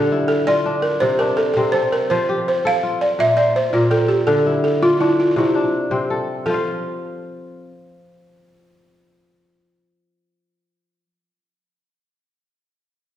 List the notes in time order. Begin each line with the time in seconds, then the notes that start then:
Already playing: D3 A4 C5 G5
0.12 E4
0.28 A4
0.47 F4 D5
0.65 D4
0.82 A#4
1.00 C3 C5
1.19 D4 A#4
1.37 A4
1.54 C3 C4 A4
1.72 A4 C5
1.92 A#4
2.10 F3 C5
2.29 G4
2.48 C5
2.65 A4 F5
2.83 F4
3.01 D5
3.19 A#2 E5
3.37 C5 D5
3.56 C5
3.73 A#2 F4 A#4
3.90 A4 G5
4.08 G4
4.27 D3 A4
4.46 E4
4.64 A4
4.83 F4
5.00 D4 E4
5.20 F4
5.31 F4
5.36 C3 E4
5.55 D4
5.91 C3 C4
6.10 A4
6.46 F3 A4
6.50 F4
6.54 F5